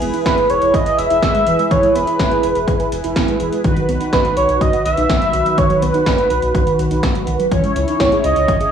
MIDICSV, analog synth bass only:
0, 0, Header, 1, 2, 480
1, 0, Start_track
1, 0, Key_signature, 4, "major"
1, 0, Tempo, 483871
1, 1695, Time_signature, 4, 2, 24, 8
1, 8646, End_track
2, 0, Start_track
2, 0, Title_t, "Analog synth bass"
2, 0, Program_c, 0, 38
2, 15, Note_on_c, 0, 28, 95
2, 107, Note_off_c, 0, 28, 0
2, 257, Note_on_c, 0, 28, 98
2, 348, Note_off_c, 0, 28, 0
2, 495, Note_on_c, 0, 28, 95
2, 587, Note_off_c, 0, 28, 0
2, 615, Note_on_c, 0, 28, 98
2, 707, Note_off_c, 0, 28, 0
2, 735, Note_on_c, 0, 28, 107
2, 827, Note_off_c, 0, 28, 0
2, 975, Note_on_c, 0, 28, 99
2, 1067, Note_off_c, 0, 28, 0
2, 1095, Note_on_c, 0, 28, 84
2, 1187, Note_off_c, 0, 28, 0
2, 1216, Note_on_c, 0, 28, 99
2, 1308, Note_off_c, 0, 28, 0
2, 1456, Note_on_c, 0, 28, 99
2, 1548, Note_off_c, 0, 28, 0
2, 1696, Note_on_c, 0, 28, 113
2, 1788, Note_off_c, 0, 28, 0
2, 1935, Note_on_c, 0, 28, 91
2, 2027, Note_off_c, 0, 28, 0
2, 2177, Note_on_c, 0, 28, 100
2, 2268, Note_off_c, 0, 28, 0
2, 2415, Note_on_c, 0, 28, 91
2, 2507, Note_off_c, 0, 28, 0
2, 2536, Note_on_c, 0, 28, 105
2, 2628, Note_off_c, 0, 28, 0
2, 2655, Note_on_c, 0, 28, 99
2, 2747, Note_off_c, 0, 28, 0
2, 2896, Note_on_c, 0, 28, 99
2, 2988, Note_off_c, 0, 28, 0
2, 3016, Note_on_c, 0, 28, 90
2, 3108, Note_off_c, 0, 28, 0
2, 3136, Note_on_c, 0, 28, 102
2, 3227, Note_off_c, 0, 28, 0
2, 3377, Note_on_c, 0, 28, 93
2, 3468, Note_off_c, 0, 28, 0
2, 3615, Note_on_c, 0, 35, 105
2, 3707, Note_off_c, 0, 35, 0
2, 3857, Note_on_c, 0, 35, 95
2, 3948, Note_off_c, 0, 35, 0
2, 4096, Note_on_c, 0, 35, 98
2, 4187, Note_off_c, 0, 35, 0
2, 4336, Note_on_c, 0, 35, 94
2, 4427, Note_off_c, 0, 35, 0
2, 4457, Note_on_c, 0, 35, 92
2, 4548, Note_off_c, 0, 35, 0
2, 4575, Note_on_c, 0, 35, 103
2, 4667, Note_off_c, 0, 35, 0
2, 4816, Note_on_c, 0, 35, 98
2, 4908, Note_off_c, 0, 35, 0
2, 4936, Note_on_c, 0, 35, 98
2, 5028, Note_off_c, 0, 35, 0
2, 5056, Note_on_c, 0, 35, 94
2, 5147, Note_off_c, 0, 35, 0
2, 5296, Note_on_c, 0, 35, 110
2, 5388, Note_off_c, 0, 35, 0
2, 5536, Note_on_c, 0, 35, 98
2, 5628, Note_off_c, 0, 35, 0
2, 5776, Note_on_c, 0, 35, 101
2, 5867, Note_off_c, 0, 35, 0
2, 6016, Note_on_c, 0, 35, 94
2, 6108, Note_off_c, 0, 35, 0
2, 6257, Note_on_c, 0, 35, 89
2, 6348, Note_off_c, 0, 35, 0
2, 6376, Note_on_c, 0, 35, 93
2, 6468, Note_off_c, 0, 35, 0
2, 6495, Note_on_c, 0, 35, 115
2, 6587, Note_off_c, 0, 35, 0
2, 6736, Note_on_c, 0, 35, 99
2, 6828, Note_off_c, 0, 35, 0
2, 6856, Note_on_c, 0, 35, 94
2, 6947, Note_off_c, 0, 35, 0
2, 6976, Note_on_c, 0, 35, 103
2, 7067, Note_off_c, 0, 35, 0
2, 7215, Note_on_c, 0, 35, 102
2, 7307, Note_off_c, 0, 35, 0
2, 7456, Note_on_c, 0, 37, 109
2, 7548, Note_off_c, 0, 37, 0
2, 7695, Note_on_c, 0, 37, 97
2, 7787, Note_off_c, 0, 37, 0
2, 7936, Note_on_c, 0, 37, 96
2, 8028, Note_off_c, 0, 37, 0
2, 8175, Note_on_c, 0, 37, 94
2, 8267, Note_off_c, 0, 37, 0
2, 8295, Note_on_c, 0, 37, 96
2, 8387, Note_off_c, 0, 37, 0
2, 8415, Note_on_c, 0, 37, 105
2, 8507, Note_off_c, 0, 37, 0
2, 8646, End_track
0, 0, End_of_file